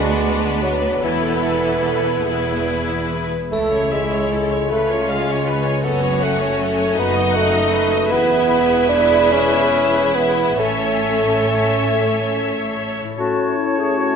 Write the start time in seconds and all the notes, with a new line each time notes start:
Already playing: D2 D3 G#3 B3 D4 F#4 B4 D5
0.21 F#4
0.62 F#3 B4
1.02 E1 E2 E3 B3 E4 A4 B4
1.44 B3
1.86 A4 B4
2.27 E1 E2 E3 E4 G#4 B4
2.68 B3
3.09 G#4 B4
3.51 C#2 C#3 A3 E4 A4 C#5, triangle
3.72 C#5
3.92 G#3 C#4 E5
4.12 C#5
4.32 E4 A4
4.52 C#5
4.70 C#2 C#3 A3 C#4 F4 B4
4.90 C#5
5.09 G#3 C#4 F5
5.28 C#5
5.46 F4 B4
5.65 C#5
5.83 F#1 F#2 B3 C#4 F#4 A4
6.01 C#5
6.21 A3 C#4 F#5
6.39 C#5
6.58 F#4 A4
6.77 C#5
6.97 F#1 F#2 B3 D#4 B4 D#5
7.14 D#5
7.33 A3 D#4 F#5
7.53 D#5
7.71 F#4 B4
7.90 D#5
8.10 E1 E2 B3 E4 G#4 B4 E5
8.50 E4
8.89 D4 G#4
9.30 C#4 B4
9.72 E5
10.15 B3 B4
10.58 A1 A2 A3 C#4 A4 C#5 E5
11.03 E4
11.47 A4
11.91 C#5
12.35 E5
12.78 C#5
13.01 A2 E4
13.10 A4
13.14 F#4 C#5
13.18 A2 A3 C#4 A5
13.57 E4
13.79 G#4
13.97 F#4